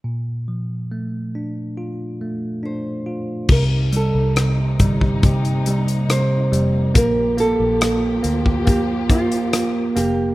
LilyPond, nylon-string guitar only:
\new Staff \with { instrumentName = "Nylon-string guitar" } { \time 4/4 \key bes \major \tempo 4 = 70 r2. c''4 | bes'8 a'4. g'8 ees'8 c''4 | bes'8 a'4. g'8 f'4 g'8 | }